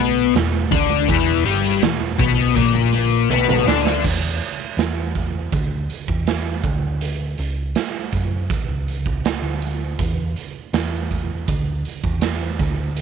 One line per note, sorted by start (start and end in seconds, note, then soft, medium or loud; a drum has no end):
0.00 0.31 B1 loud
0.00 0.33 B2 loud
0.00 0.33 B3 loud
0.34 0.69 E1 medium
0.34 0.64 E2 medium
0.34 snare loud
0.34 closed hi-hat medium
0.53 high conga medium
0.71 1.06 D2 loud
0.71 1.07 D3 medium
0.71 1.07 D4 loud
0.71 kick loud
0.71 closed hi-hat medium
0.71 low conga medium
0.90 high conga medium
1.08 1.43 E1 medium
1.08 1.44 E2 loud
1.08 1.44 E3 medium
1.08 kick loud
1.08 closed hi-hat medium
1.44 1.80 G1 medium
1.44 1.81 G2 medium
1.44 1.81 G3 loud
1.44 closed hi-hat medium
1.64 closed hi-hat medium
1.82 2.16 E1 medium
1.82 2.12 E2 medium
1.82 snare loud
1.82 closed hi-hat medium
2.00 high conga medium
2.19 2.54 B1 loud
2.19 2.56 B2 medium
2.19 2.56 B3 loud
2.19 kick loud
2.19 closed hi-hat medium
2.19 low conga medium
2.56 3.26 A#1 medium
2.56 3.29 A#2 loud
2.56 3.29 A#3 loud
2.56 kick loud
2.56 closed hi-hat medium
2.75 high conga medium
2.93 closed hi-hat medium
2.93 high conga medium
3.30 3.64 B1 medium
3.30 3.66 B2 medium
3.30 3.66 B3 medium
3.30 high tom medium
3.48 mid tom medium
3.48 high conga medium
3.48 low conga medium
3.67 4.01 D2 loud
3.67 4.03 D3 medium
3.67 4.03 D4 medium
3.67 snare medium
3.67 low conga medium
3.86 snare medium
3.86 high conga medium
4.04 4.39 E2 medium
4.04 kick loud
4.04 crash medium
4.42 closed hi-hat medium
4.77 5.48 E2 medium
4.77 snare loud
4.77 closed hi-hat medium
5.15 kick medium
5.15 closed hi-hat medium
5.52 5.87 D2 medium
5.52 kick loud
5.52 closed hi-hat medium
5.90 closed hi-hat medium
6.08 6.60 E2 medium
6.08 kick medium
6.27 snare loud
6.27 closed hi-hat medium
6.64 7.34 D2 medium
6.64 kick loud
6.64 closed hi-hat medium
7.01 closed hi-hat medium
7.38 7.73 C#2 medium
7.38 closed hi-hat medium
7.75 snare loud
7.75 closed hi-hat medium
8.13 8.48 F#2 medium
8.13 kick medium
8.13 closed hi-hat medium
8.50 kick loud
8.50 closed hi-hat medium
8.68 9.39 C#2 medium
8.88 closed hi-hat medium
9.06 kick medium
9.25 snare loud
9.25 closed hi-hat medium
9.42 9.95 D2 medium
9.62 closed hi-hat medium
9.99 10.34 E2 medium
9.99 kick loud
9.99 closed hi-hat medium
10.36 closed hi-hat medium
10.73 11.44 E2 medium
10.73 snare loud
10.73 closed hi-hat medium
11.11 kick medium
11.11 closed hi-hat medium
11.48 11.83 D2 medium
11.48 kick loud
11.48 closed hi-hat medium
11.85 closed hi-hat soft
12.04 12.56 E2 medium
12.04 kick medium
12.21 snare loud
12.21 closed hi-hat medium
12.59 13.01 D2 loud
12.59 kick loud
12.59 snare soft
12.59 closed hi-hat medium
12.97 closed hi-hat medium